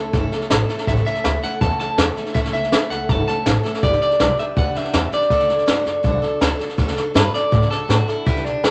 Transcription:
Already playing: steel-string acoustic guitar A3 C#4 E4 A4, clean electric guitar A5
0.13 upright bass G1, steel-string acoustic guitar A2 E3 A3 C#4 E4 A4, kick, snare
0.32 steel-string acoustic guitar A3 C#4 E4 A4, muted upright bass stroke, snare
0.41 snare
0.50 upright bass A1, steel-string acoustic guitar A3 C#4 E4 A4, snare, hi-hat pedal
0.69 steel-string acoustic guitar A3 C#4 E4 A4, muted upright bass stroke, snare
0.78 snare
0.87 upright bass A1, steel-string acoustic guitar A2 E3 A3 C#4 E4 A4, clean electric guitar E5, kick, snare
0.97 snare
1.06 steel-string acoustic guitar A3 C#4 E4 A4, clean electric guitar E5, muted upright bass stroke, snare
1.15 snare
1.24 upright bass D2, steel-string acoustic guitar A3 C#4 E4 A4, snare, hi-hat pedal
1.42 steel-string acoustic guitar A3 C#4 E4 A4, clean electric guitar F#5, muted upright bass stroke, snare
1.61 upright bass E2, steel-string acoustic guitar A2 E3 A3 C#4 E4 A4, clean electric guitar A5, kick, snare
1.79 steel-string acoustic guitar A3 C#4 E4 A4, clean electric guitar A5, muted upright bass stroke, snare
1.98 upright bass E2, steel-string acoustic guitar A3 C#4 E4 A4, snare, hi-hat pedal
2.16 steel-string acoustic guitar A3 C#4 E4 A4, muted upright bass stroke, snare
2.26 snare
2.34 upright bass A1, steel-string acoustic guitar A2 E3 A3 C#4 E4 A4, clean electric guitar E5, kick, snare
2.44 snare
2.53 upright bass C#2, steel-string acoustic guitar A3 C#4 E4 A4, clean electric guitar E5, snare
2.63 snare
2.72 upright bass D2, steel-string acoustic guitar A3 C#4 E4 A4, snare, hi-hat pedal
2.90 upright bass C#2, steel-string acoustic guitar A3 C#4 E4 A4, clean electric guitar F#5, snare
3.09 upright bass G1, steel-string acoustic guitar A2 E3 A3 C#4 E4 A4, clean electric guitar A5, kick, snare
3.27 steel-string acoustic guitar A3 C#4 E4 A4, clean electric guitar A5, muted upright bass stroke, snare
3.46 upright bass A1, steel-string acoustic guitar A3 C#4 E4 A4, snare, hi-hat pedal
3.63 steel-string acoustic guitar A3 C#4 E4 A4, muted upright bass stroke, snare
3.74 snare
3.83 upright bass G1, steel-string acoustic guitar G3 D4 G4 B4, clean electric guitar D5, kick, snare
3.92 snare
4.01 steel-string acoustic guitar D4 G4 B4, clean electric guitar D5, muted upright bass stroke, snare
4.11 snare
4.19 upright bass B1, steel-string acoustic guitar G3 D4 G4 B4, snare, hi-hat pedal
4.38 steel-string acoustic guitar D4 G4 B4, clean electric guitar E5, muted upright bass stroke, snare
4.56 upright bass D2, steel-string acoustic guitar G3 D4 G4 B4, clean electric guitar F#5, kick, snare
4.75 steel-string acoustic guitar D4 G4 B4, clean electric guitar E5, muted upright bass stroke, snare
4.84 snare
4.93 upright bass E2, steel-string acoustic guitar G3 G4 B4, snare, hi-hat pedal
5.12 steel-string acoustic guitar D4 G4 B4, clean electric guitar D5, muted upright bass stroke, snare
5.21 snare
5.30 upright bass D2, steel-string acoustic guitar D3 A3 D4 F#4 A4, kick, snare
5.39 snare
5.48 upright bass F#2, steel-string acoustic guitar D4 F#4 A4, snare
5.58 snare
5.66 upright bass G2, steel-string acoustic guitar A3 D4 F#4 A4, snare, hi-hat pedal
5.85 upright bass F#2, steel-string acoustic guitar D4 F#4 A4, snare
6.03 upright bass B1, steel-string acoustic guitar D3 A3 D4 F#4 A4, kick, snare
6.22 steel-string acoustic guitar D4 F#4 A4, muted upright bass stroke, snare
6.40 upright bass D2, steel-string acoustic guitar A3 D4 F#4 A4, snare, hi-hat pedal
6.59 steel-string acoustic guitar D4 F#4 A4, muted upright bass stroke, snare
6.69 snare
6.78 upright bass D2, steel-string acoustic guitar D3 A3 D4 F#4 A4, kick, snare
6.87 snare
6.96 steel-string acoustic guitar D4 F#4 A4, muted upright bass stroke, snare
7.14 upright bass G2, steel-string acoustic guitar A3 D4 F#4, clean electric guitar B4, snare, hi-hat pedal
7.33 steel-string acoustic guitar D4 F#4 A4, clean electric guitar D5, muted upright bass stroke, snare
7.51 upright bass A2, steel-string acoustic guitar D3 A3 D4 F#4 A4, kick, snare
7.62 snare
7.70 steel-string acoustic guitar D4 F#4 A4, clean electric guitar A4, muted upright bass stroke, snare
7.88 upright bass A2, steel-string acoustic guitar A3 D4 F#4 A4, clean electric guitar F#4, snare, hi-hat pedal
8.08 steel-string acoustic guitar D4 F#4 A4, clean electric guitar E4, muted upright bass stroke, snare
8.26 upright bass G1, steel-string acoustic guitar G3 D4 G4 B4, clean electric guitar E4, kick, snare
8.36 snare
8.45 upright bass B1, clean electric guitar D4, steel-string acoustic guitar G4 B4, snare
8.63 upright bass B1, steel-string acoustic guitar G3 G4 B4, snare, hi-hat pedal

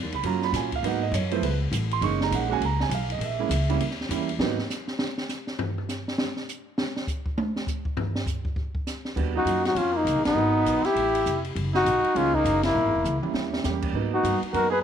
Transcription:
0.02 upright bass D#2
0.12 upright bass C#2, grand piano B5, ride
0.23 upright bass F#2, grand piano F#3 A#3 C#4 F4 A#5, ride
0.42 grand piano B5, snare
0.53 upright bass A#2, grand piano G#5, snare, hi-hat pedal, ride
0.72 grand piano F5, kick, ride
0.83 upright bass G#2, grand piano F#3 A#3 B3 D#4 F#5, ride
1.03 grand piano D#5
1.11 upright bass F#2, grand piano C#5, hi-hat pedal, ride
1.31 grand piano F3 A3 B3 E4 C5, ride
1.42 upright bass C#2, grand piano B4, ride
1.72 upright bass A1, hi-hat pedal, ride
1.91 grand piano C6, ride
2.01 upright bass F#1, grand piano G#3 A#3 C#4 D#4 C#6, ride
2.21 grand piano A#5, snare
2.31 upright bass A#1, grand piano F#5, hi-hat pedal, ride
2.49 grand piano G#3 A#3 C#4 F#4 G#5
2.61 upright bass C#2, ride
2.65 grand piano A#5
2.80 grand piano G#5, snare
2.89 upright bass B1, hi-hat pedal, ride
2.94 grand piano F5
3.10 grand piano D#5, ride
3.19 upright bass A#1, ride
3.24 grand piano E5
3.39 grand piano G#3 A#3 C#4 E4
3.49 upright bass C#2, hi-hat pedal, ride
3.69 grand piano G3 A#3 C#4 E4, ride
3.79 upright bass D#2, ride
3.91 snare
4.01 snare
4.09 upright bass E2, grand piano G3 A#3 C#4 E4, hi-hat pedal, ride
4.29 ride
4.39 upright bass G#2, grand piano F#3 A#3 B3 D#4, snare
4.59 snare
4.70 snare, hi-hat pedal
4.88 snare
4.99 snare
5.18 snare
5.29 snare, hi-hat pedal
5.47 snare
5.59 floor tom
5.78 floor tom
5.89 snare, hi-hat pedal
6.08 snare
6.18 snare
6.37 snare
6.49 hi-hat pedal
6.78 snare
6.96 snare
7.07 kick, hi-hat pedal
7.26 kick
7.38 high tom
7.56 snare
7.67 kick, hi-hat pedal
7.85 kick
7.97 floor tom
8.15 snare
8.27 kick, hi-hat pedal
8.45 kick
8.56 kick
8.75 kick
8.87 snare, hi-hat pedal
9.05 snare
9.16 upright bass D#2, grand piano G3 B3 D4 F#4, kick, crash
9.34 grand piano F#3 A#3 C#4 F4, trumpet D#4, flugelhorn F#4
9.45 upright bass F#2, hi-hat pedal, ride
9.65 trumpet D#4, flugelhorn F#4, snare, ride
9.75 upright bass F2, trumpet C#4, flugelhorn F4, ride
9.93 trumpet A#3, flugelhorn D#4
10.05 upright bass C#2, hi-hat pedal, ride
10.16 upright bass A#1
10.25 upright bass F#1, trumpet B3, flugelhorn D#4, snare, ride
10.35 upright bass G#1, grand piano F#3 B3 D#4 A#4
10.65 upright bass A#1, hi-hat pedal, ride
10.84 trumpet E4, flugelhorn G4, muted upright bass stroke, snare, ride
10.95 upright bass A1, ride
11.15 ride
11.26 upright bass F1, hi-hat pedal
11.45 ride
11.55 upright bass F#1, ride
11.74 trumpet D#4, flugelhorn F#4, snare
11.85 upright bass A#1, hi-hat pedal, ride
12.04 muted upright bass stroke, ride
12.14 upright bass C#2, grand piano G#3 A#3 C#4 D#4, trumpet C#4, flugelhorn F4, ride
12.34 trumpet A#3, flugelhorn D#4, kick
12.44 upright bass F#1, hi-hat pedal, ride
12.63 trumpet A#3, flugelhorn E4, snare, ride
12.75 upright bass A#1
12.85 upright bass G#1
12.95 upright bass E1
13.04 upright bass C#2, hi-hat pedal, mid tom
13.22 grand piano G3 A#3 C#4 E4, muted upright bass stroke, mid tom
13.33 upright bass D#2, snare
13.53 snare
13.64 upright bass E2, grand piano G3 A#3 C#4 G4, snare, hi-hat pedal
13.82 kick, crash
13.93 upright bass G#2, grand piano F#3 A#3 B3 D#4
14.12 trumpet D#4, flugelhorn F#4
14.23 upright bass G2, hi-hat pedal, ride
14.42 muted upright bass stroke, ride
14.52 upright bass F#2, grand piano F#3 A#3 B3 D#4, trumpet F#4, flugelhorn A#4, ride
14.70 trumpet G#4, flugelhorn B4

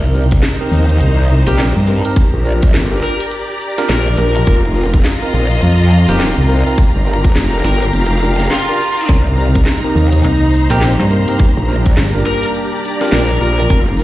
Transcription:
Already playing: wobble bass C2, string section D#4
0.14 tine electric piano C4 D#4 G4 A#4, string section C5, shaker
0.31 kick, closed hi-hat, shaker
0.42 string section A#5, snare, closed hi-hat, shaker
0.61 tine electric piano C4 D#4 G4 A#4
0.72 wobble bass D#2, shaker
0.89 closed hi-hat, shaker
1.01 wobble bass C2, closed hi-hat, shaker
1.30 shaker
1.47 wobble bass A#1, tine electric piano C4 D#4 G4 A#4, lead electric guitar G4, closed hi-hat, shaker
1.59 snare, closed hi-hat, shaker
1.76 wobble bass G2
1.87 tine electric piano C4 D#4 G4 A#4, shaker
2.05 tine electric piano C4 D#4 G4 A#4, closed hi-hat, shaker
2.16 string section G4, kick, closed hi-hat, shaker
2.34 wobble bass A#1
2.45 tine electric piano D4 F4 G4 A#4, shaker
2.62 kick, closed hi-hat, shaker
2.74 wobble bass G1, snare, closed hi-hat, shaker
2.79 string section D5
2.92 tine electric piano D4 F4 G4 A#4
3.03 lead electric guitar A#4, shaker
3.20 closed hi-hat, shaker
3.31 closed hi-hat, shaker
3.60 shaker
3.77 tine electric piano D4 F4 G4 A#4, snare, closed hi-hat, shaker
3.89 wobble bass A#1, lead electric guitar A#4, snare, closed hi-hat, shaker
4.17 wobble bass A#1, tine electric piano D4 F4 G4 A#4, lead electric guitar A#4, shaker
4.36 tine electric piano D4 F4 G4 A#4, closed hi-hat, shaker
4.47 wobble bass F1, string section F4, kick, closed hi-hat, shaker
4.64 string section D#5
4.75 tine electric piano C4 D#4 F4 A#4, shaker
4.93 kick, closed hi-hat, shaker
5.05 snare, closed hi-hat, shaker
5.22 tine electric piano C4 D#4 F4 A#4
5.34 wobble bass A#1, shaker
5.51 closed hi-hat, shaker
5.62 wobble bass F2, closed hi-hat, shaker
5.92 shaker
6.09 wobble bass D#1, tine electric piano C4 D#4 F4 A#4, lead electric guitar G4, closed hi-hat, shaker
6.20 snare, closed hi-hat, shaker
6.38 wobble bass C2
6.48 tine electric piano C4 D#4 F4 A#4, shaker
6.67 tine electric piano C4 D#4 F4 A#4, closed hi-hat, shaker
6.78 string section G4, kick, closed hi-hat, shaker
6.96 wobble bass G1
7.06 tine electric piano D4 F4 G4 A#4, shaker
7.24 kick, closed hi-hat, shaker
7.32 wobble bass F1, string section F5, shaker
7.36 snare, closed hi-hat
7.53 tine electric piano D4 F4 G4 A#4
7.64 wobble bass G1, lead electric guitar A#4, shaker
7.81 closed hi-hat, shaker
7.93 wobble bass F1, closed hi-hat, shaker
8.22 tine electric piano D4 F4 G4 A#4, shaker
8.39 snare, closed hi-hat, shaker
8.51 lead electric guitar F4, snare, closed hi-hat, shaker
8.69 tine electric piano D4 F4 G4 A#4
8.80 shaker
8.97 closed hi-hat, shaker
9.09 wobble bass C2, ambient pad C3 G3 A#3 D#4, string section D#4, kick, closed hi-hat, shaker
9.37 tine electric piano C4 D#4 G4 A#4, shaker
9.55 kick, closed hi-hat, shaker
9.66 snare, closed hi-hat, shaker
9.84 tine electric piano C4 D#4 G4 A#4, string section C5
9.95 wobble bass D#2, shaker
10.12 closed hi-hat, shaker
10.24 fm bass C2, closed hi-hat, shaker
10.52 shaker
10.70 fm bass A#1, tine electric piano C4 D#4 G4 A#4, lead electric guitar G4, closed hi-hat, shaker
10.81 snare, closed hi-hat, shaker
10.99 fm bass G2
11.10 tine electric piano C4 D#4 G4 A#4, shaker
11.28 tine electric piano C4 D#4 G4 A#4, closed hi-hat, shaker
11.38 ambient pad D4, string section G4, kick, closed hi-hat, shaker
11.57 wobble bass A#1
11.68 tine electric piano D4 F4 G4 A#4, shaker
11.86 kick, closed hi-hat, shaker
11.97 fm bass G1, snare, closed hi-hat, shaker
12.03 string section D5
12.15 tine electric piano D4 F4 G4 A#4
12.26 lead electric guitar A#4, shaker
12.43 closed hi-hat, shaker
12.55 closed hi-hat, shaker
12.85 shaker
13.01 tine electric piano D4 F4 G4 A#4, snare, closed hi-hat, shaker
13.12 wobble bass A#1, lead electric guitar A#4, snare, closed hi-hat, shaker
13.41 wobble bass A#1, tine electric piano D4 F4 G4 A#4, lead electric guitar A#4, shaker
13.59 tine electric piano D4 F4 G4 A#4, closed hi-hat, shaker
13.70 wobble bass F1, ambient pad F3 C4 D#4 A#4, string section F4, kick, closed hi-hat, shaker
13.98 tine electric piano C4 D#4 F4 A#4, shaker

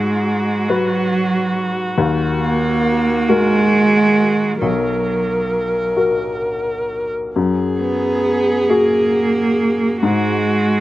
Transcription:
Already playing: upright piano G#2, cello G#3, viola F#4
0.68 cello F#3, upright piano F#4 B4
1.98 upright piano D#2
2.41 cello A#3
3.28 cello G#3, upright piano F#4 A#4
4.61 upright piano B1, cello F#3, viola A#4
5.97 upright piano F#4 A#4
7.36 upright piano F#2, viola G#4
7.80 cello B3
8.69 cello A#3, upright piano F#4 G#4
10.03 upright piano G#2, cello G#3, viola F#4

